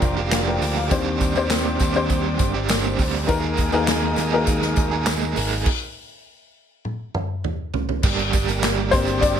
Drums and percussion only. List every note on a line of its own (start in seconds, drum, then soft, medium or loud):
0.02 kick medium
0.02 closed hi-hat medium
0.02 tambourine soft
0.31 snare loud
0.31 clap medium
0.31 closed hi-hat medium
0.31 tambourine medium
0.62 open hi-hat medium
0.62 tambourine soft
0.91 kick loud
0.91 closed hi-hat medium
0.91 tambourine soft
1.20 kick medium
1.20 closed hi-hat medium
1.20 tambourine soft
1.35 tambourine soft
1.50 snare loud
1.50 clap medium
1.50 closed hi-hat medium
1.50 tambourine medium
1.79 kick medium
1.79 closed hi-hat medium
1.79 tambourine medium
1.94 tambourine soft
2.10 kick medium
2.10 closed hi-hat medium
2.10 tambourine soft
2.39 kick medium
2.39 closed hi-hat medium
2.39 tambourine soft
2.69 snare loud
2.69 clap medium
2.69 closed hi-hat loud
2.69 tambourine medium
2.84 tambourine soft
2.99 kick medium
2.99 open hi-hat medium
2.99 tambourine soft
3.28 kick loud
3.28 closed hi-hat loud
3.28 tambourine soft
3.57 kick medium
3.57 closed hi-hat medium
3.57 tambourine soft
3.72 tambourine soft
3.87 snare loud
3.87 clap medium
3.87 closed hi-hat medium
3.87 tambourine medium
4.16 closed hi-hat medium
4.16 tambourine medium
4.47 kick medium
4.47 closed hi-hat medium
4.47 tambourine soft
4.62 snare soft
4.76 kick medium
4.76 closed hi-hat medium
4.76 tambourine soft
5.06 snare loud
5.06 clap medium
5.06 closed hi-hat medium
5.06 tambourine medium
5.22 tambourine soft
5.36 open hi-hat medium
5.36 tambourine soft
5.51 tambourine soft
5.66 kick loud
5.66 crash medium
6.85 high tom medium
7.15 mid tom medium
7.44 mid tom medium
7.74 floor tom medium
7.89 floor tom medium
8.03 kick loud
8.03 crash loud
8.03 tambourine medium
8.19 closed hi-hat soft
8.33 kick loud
8.33 closed hi-hat medium
8.33 tambourine medium
8.48 closed hi-hat medium
8.48 tambourine soft
8.63 snare loud
8.63 clap medium
8.63 tambourine medium
8.92 kick medium
8.92 closed hi-hat medium
8.92 tambourine soft
9.07 closed hi-hat soft
9.07 tambourine soft
9.22 kick medium
9.22 closed hi-hat medium
9.22 tambourine medium